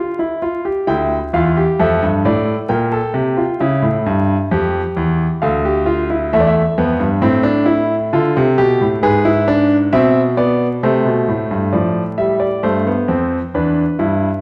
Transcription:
Already playing: D3 F4 D5
0.19 E4
0.42 F4
0.65 G4
0.87 D2 E4 G5
1.33 E2 F4 F5
1.57 G4
1.80 F2 A4 E5
2.03 G2
2.25 A2 D5
2.69 A#2 A#4 G5
2.92 A4
3.14 C3 G4
3.37 F4
3.60 C#3 E4
3.82 A2
4.06 G2
4.51 F2 G4
4.97 E2
5.42 D2 A4 F5
5.65 G4
5.86 F4
6.10 E4
6.33 E2 A3 E5
6.40 D5
6.47 E5
6.78 F2 B3
7.00 G2
7.22 A2 C4
7.43 D4
7.66 E4
8.13 D3 F4 A4
8.37 C3
8.58 B2 G4
8.81 A2
9.03 G#2 G#4 B4
9.25 E4
9.48 D4
9.92 B2 C4 E5
10.37 B3 D5
10.83 C3 A3 C5
11.05 B2
11.28 A2
11.51 G2
11.73 A2 F3 D5
12.18 G3 E5
12.40 D5
12.63 G2 A3 C5
12.87 B3
13.08 F2 C4
13.54 E2 D4 B4
13.99 G2 E4

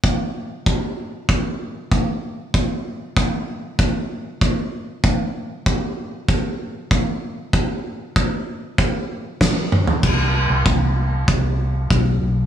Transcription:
0.04 kick
0.66 kick
1.29 kick
1.92 kick
2.54 kick
3.17 kick
3.79 kick
4.41 kick
5.04 kick
5.66 kick
6.29 kick
6.91 kick
7.53 kick
8.16 kick
8.78 kick
9.41 kick, snare
9.72 mid tom
9.87 floor tom
10.03 C2, kick, crash
10.50 C2
10.66 C2, kick
11.28 C2, kick
11.90 B1, kick
12.22 B1

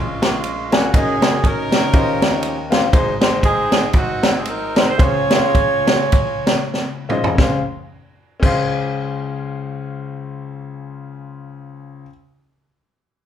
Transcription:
Already playing: A#1 A#2 G#3 C#4 F4
0.22 snare, ride
0.44 ride
0.72 C#4 F4 F#4 G#4 A#4 G#5, snare, ride
0.93 F#1 F#2 C#4 D#4 F#4 G#4 A#4 D#5, kick, ride
1.21 C#4 D#4 F#4 A#4 C#5, snare, ride
1.44 C#4 D#4 A#4, kick, ride
1.72 snare, ride
1.93 D#2 D#3 C#4 F4 G4 C5 D#5, kick, ride
2.22 snare, ride
2.43 ride
2.70 C#4 F4 G4 C5 F5, snare, ride
2.92 G#1 G#2 D#4 G#4 C5, kick, ride
3.20 D#4 G#4 C5, snare, ride
3.43 C4 D#4 G#4, kick, ride
3.72 snare, ride
3.93 C4 D#4 F#4, kick, ride
4.23 snare, ride
4.37 G#4
4.45 D#4 A#4, ride
4.75 D#4 G#4 C5, snare, ride
4.90 C5
4.98 C#2 C#3 C#4 F4 G#4 C5 C#5 F5, kick, ride
5.30 C#4 F4 G#4 E5 C6, snare, ride
5.37 F5
5.55 kick, ride
5.87 snare, ride
6.12 kick, ride
6.47 snare, ride
6.74 snare
7.09 C#4 F4 G#4 C5 D#5, mid tom
7.24 floor tom
7.35 C#2 C#4 G#4, kick, snare
7.39 C5 F5
8.40 C#2 C#4 G#4 C5, kick, crash
8.46 F5

